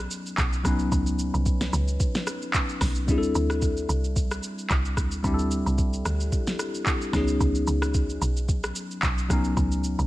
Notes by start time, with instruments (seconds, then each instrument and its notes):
Already playing: tine electric piano F#3 B3 C#4 D#4 G#4
0.11 shaker
0.26 shaker
0.38 log drum bass B1, kick, clap, shaker
0.53 shaker
0.63 log drum bass C2, tine electric piano F#3 B3 C#4 D#4, kick, cross-stick, shaker
0.68 tine electric piano B4
0.79 shaker
0.92 log drum bass C#2, kick, shaker
1.07 shaker
1.19 shaker
1.34 log drum bass C2, shaker
1.46 kick, shaker
1.61 snare, shaker
1.73 log drum bass C#2, shaker
1.88 shaker
2.00 kick, shaker
2.15 snare, shaker
2.27 cross-stick, shaker
2.42 shaker
2.54 kick, clap, shaker
2.69 shaker
2.81 log drum bass B1, kick, cross-stick, snare, open hi-hat, shaker
2.95 shaker
3.07 log drum bass D2, tine electric piano G3 C4 D4 E4, kick, shaker
3.11 tine electric piano G#4
3.18 tine electric piano A4
3.23 shaker
3.35 log drum bass D2, shaker
3.50 cross-stick, shaker
3.62 kick, shaker
3.77 shaker
3.89 log drum bass C2, shaker
4.04 shaker
4.16 kick, shaker
4.31 cross-stick, shaker
4.43 shaker
4.58 shaker
4.70 log drum bass C2, kick, clap, shaker
4.85 shaker
4.97 log drum bass D2, kick, cross-stick, shaker
5.11 shaker
5.23 log drum bass D2, tine electric piano G3 C4 D4 E4, kick, shaker
5.27 tine electric piano G4
5.34 tine electric piano A4
5.39 shaker
5.51 shaker
5.66 log drum bass C2, shaker
5.78 kick, shaker
5.93 shaker
6.05 log drum bass D2, cross-stick, shaker
6.20 shaker
6.32 kick, shaker
6.47 snare, shaker
6.59 cross-stick, shaker
6.75 shaker
6.86 kick, clap, shaker
7.02 shaker
7.12 log drum bass C#2, tine electric piano F3 B3 C#4 D#4, kick, cross-stick, snare, shaker
7.17 tine electric piano F#3 G#4
7.28 shaker
7.40 log drum bass C#2, kick, shaker
7.55 shaker
7.67 log drum bass C#2, shaker
7.82 cross-stick, shaker
7.94 kick, shaker
8.10 shaker
8.21 log drum bass B1, shaker
8.37 shaker
8.49 kick, shaker
8.63 cross-stick, shaker
8.75 shaker
8.91 shaker
9.03 log drum bass B1, kick, clap, shaker
9.18 shaker
9.28 log drum bass C2, tine electric piano F#3 B3 C#4 D#4, kick, cross-stick, shaker
9.33 tine electric piano A#4
9.44 shaker
9.57 log drum bass C#2, kick, shaker
9.72 shaker
9.84 shaker
9.99 log drum bass C2, shaker